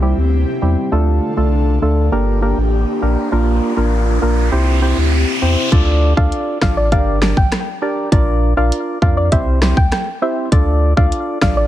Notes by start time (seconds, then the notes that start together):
Already playing: C2 C3 C4 E4 G4, downlifter
0.02 G3 C4 E4 G4
0.17 D2
0.62 E2 G3 C4 E4 G4
0.92 D2 D3 A3 D4 F4 A4, riser
1.37 C2 A3 D4 F4 A4
1.82 D2 A3 D4 F4 A4
2.12 G1 A#3 D4 G4 A#4
2.42 A#3 D4 G4 A#4
2.57 A1
3.02 A#1 A#3 D4 G4 A#4
3.32 A#1 A#3 D4 F4 A#4
3.77 A1 A#3 D4 F4 A#4
4.22 A#1 A#3 D4 F4 A#4
4.52 C2 C3 C4 E4 G4 C5
4.82 C4 E4 G4 C5
4.97 D2
5.42 E2 C4 E4 G4 C5
5.72 D2 D4 F4 A4 D5, kick, closed hi-hat
6.17 D2 D4 F4 A4 D5 F5, kick
6.32 closed hi-hat
6.62 A1 D4 F4 A4 D5 F5, kick, cross-stick, snare
6.77 D5
6.92 G1 D4 G4 A#4 D5 F5, kick, closed hi-hat
7.22 D4 G4 A#4 D5, cross-stick, snare
7.37 A1 G5, kick
7.52 cross-stick, snare, closed hi-hat
7.82 D4 G4 A#4 D5
8.12 A#1 D4 F4 A#4 D5, kick, closed hi-hat
8.57 A#1 D4 F4 A#4 D5 F5
8.72 closed hi-hat
9.02 F2 D4 F4 A#4 D5 F5, kick
9.17 D5
9.32 C2 C4 E4 G4 C5 E5, kick, closed hi-hat
9.62 C4 E4 G4 C5, cross-stick, snare
9.77 D2 G5, kick
9.92 G5, cross-stick, snare, closed hi-hat
10.22 C4 E4 G4 C5 E5
10.52 D2 D4 F4 A4 D5, kick, closed hi-hat
10.97 D2 D4 F4 A4 D5 F5, kick
11.12 closed hi-hat
11.41 A1 D4 F4 A4 D5 F5, kick, cross-stick, snare
11.57 D5